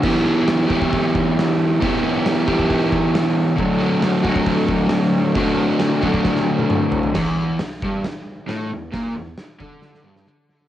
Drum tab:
CC |x---------------|----------------|----------------|----------------|
HH |----o---o---o---|o---o---o---o---|o---o---o---o---|o---o-----------|
SD |----o-------o---|----o-------o---|----o-------o---|----o---oo------|
T1 |----------------|----------------|----------------|-----------o----|
T2 |----------------|----------------|----------------|------------o---|
FT |----------------|----------------|----------------|--------------oo|
BD |o-----ooo-o-----|o-----ooo-o-----|o-----ooo-o-----|o-----ooo-------|

CC |x---------------|----------------|
HH |----o---o---o---|o---o-----------|
SD |o---o---o---o---|o---o---oo-oo-oo|
T1 |----------------|----------------|
T2 |----------------|----------------|
FT |----------------|----------------|
BD |o-----o---------|o-----o---------|